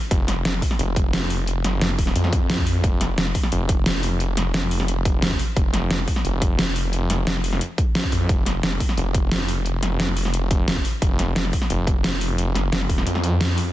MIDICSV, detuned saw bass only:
0, 0, Header, 1, 2, 480
1, 0, Start_track
1, 0, Tempo, 340909
1, 156, Time_signature, 4, 2, 24, 8
1, 19326, End_track
2, 0, Start_track
2, 0, Title_t, "Detuned saw bass"
2, 0, Program_c, 0, 39
2, 156, Note_on_c, 0, 29, 96
2, 617, Note_off_c, 0, 29, 0
2, 636, Note_on_c, 0, 29, 99
2, 856, Note_off_c, 0, 29, 0
2, 1115, Note_on_c, 0, 29, 96
2, 2296, Note_off_c, 0, 29, 0
2, 2316, Note_on_c, 0, 30, 99
2, 2777, Note_off_c, 0, 30, 0
2, 2796, Note_on_c, 0, 27, 98
2, 3017, Note_off_c, 0, 27, 0
2, 3035, Note_on_c, 0, 41, 98
2, 3976, Note_off_c, 0, 41, 0
2, 3996, Note_on_c, 0, 29, 96
2, 4457, Note_off_c, 0, 29, 0
2, 4476, Note_on_c, 0, 29, 101
2, 4697, Note_off_c, 0, 29, 0
2, 4956, Note_on_c, 0, 29, 97
2, 6137, Note_off_c, 0, 29, 0
2, 6156, Note_on_c, 0, 29, 98
2, 7337, Note_off_c, 0, 29, 0
2, 7355, Note_on_c, 0, 29, 102
2, 7576, Note_off_c, 0, 29, 0
2, 7836, Note_on_c, 0, 29, 95
2, 8297, Note_off_c, 0, 29, 0
2, 8316, Note_on_c, 0, 29, 96
2, 8537, Note_off_c, 0, 29, 0
2, 8795, Note_on_c, 0, 29, 99
2, 9976, Note_off_c, 0, 29, 0
2, 9996, Note_on_c, 0, 29, 99
2, 10696, Note_off_c, 0, 29, 0
2, 11436, Note_on_c, 0, 41, 96
2, 11657, Note_off_c, 0, 41, 0
2, 11676, Note_on_c, 0, 29, 94
2, 12137, Note_off_c, 0, 29, 0
2, 12156, Note_on_c, 0, 29, 98
2, 12377, Note_off_c, 0, 29, 0
2, 12637, Note_on_c, 0, 29, 98
2, 13817, Note_off_c, 0, 29, 0
2, 13836, Note_on_c, 0, 29, 99
2, 15017, Note_off_c, 0, 29, 0
2, 15036, Note_on_c, 0, 29, 98
2, 15257, Note_off_c, 0, 29, 0
2, 15516, Note_on_c, 0, 29, 94
2, 15977, Note_off_c, 0, 29, 0
2, 15995, Note_on_c, 0, 29, 98
2, 16216, Note_off_c, 0, 29, 0
2, 16476, Note_on_c, 0, 29, 97
2, 17657, Note_off_c, 0, 29, 0
2, 17676, Note_on_c, 0, 30, 103
2, 18137, Note_off_c, 0, 30, 0
2, 18156, Note_on_c, 0, 27, 98
2, 18377, Note_off_c, 0, 27, 0
2, 18397, Note_on_c, 0, 41, 96
2, 19326, Note_off_c, 0, 41, 0
2, 19326, End_track
0, 0, End_of_file